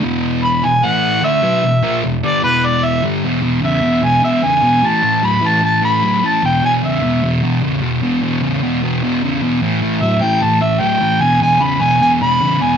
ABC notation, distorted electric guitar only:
X:1
M:4/4
L:1/8
Q:1/4=150
K:Emix
V:1 name="Distorted electric guitar" clef=bass
[E,,B,,E,]3 [E,,B,,] [A,,E,A,]2 [D,A,D] [B,,F,B,] | [E,,B,,] [^A,,=F,^A,] [E,,B,,] [=G,,D,=G,] [E,,B,,E,]3 [G,,D,G,] | [E,,B,,] [E,,B,,] [E,,C,] [E,,B,,] [E,,B,,] [E,,B,,] [E,,C,] [E,,B,,] | [A,,E,] [A,,E,] [A,,F,] [A,,E,] [A,,E,] [A,,E,] [A,,F,] [A,,E,] |
[E,,B,,] [E,,B,,] [E,,C,] [E,,B,,] [E,,B,,] [E,,B,,] [E,,C,] [E,,B,,] | [E,,B,,] [E,,B,,] [E,,C,] [E,,B,,] [E,,B,,] [E,,B,,] [E,,C,] [E,,B,,] | [A,,E,] [A,,E,] [A,,F,] [A,,E,] [A,,E,] [A,,E,] [A,,F,] [A,,E,] | [E,,B,,] [E,,B,,] [E,,C,] [E,,B,,] [E,,B,,] [E,,B,,] [E,,C,] [E,,B,,] |]